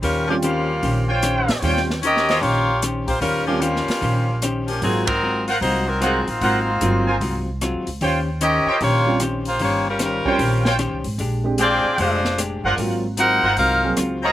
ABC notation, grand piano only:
X:1
M:4/4
L:1/8
Q:"Swing" 1/4=151
K:Ebmix
V:1 name="Grand piano"
z [G,CDF] z6 | [G,CDF] z6 z | z [G,CDF] z6 | [_G,B,CF] z6 z |
z2 [_G,B,CF] z4 z | z4 z [G,CDF] z2 | z3 [G,CDF] z4 | z [A,C=DG] z6 |
[_G,B,CF] z4 [G,B,CA] z2 |]